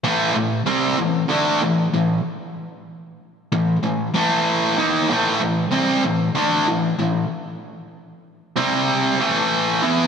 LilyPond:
\new Staff \with { instrumentName = "Distorted electric guitar" } { \clef bass \time 4/4 \key a \minor \tempo 4 = 95 <a, e a>8 <a, e>8 <c g c'>8 <a, e>8 <d a d'>8 <a, e>8 <a, e>8 r8 | r4. <a, e>8 <a, e>8 <a, e a>4 <dis bes dis'>8 | <a, e a>8 <a, e>8 <c g c'>8 <a, e>8 <d a d'>8 <a, e>8 <a, e>8 r8 | r4. <c g c'>4 <a, e a>4 <e b e'>8 | }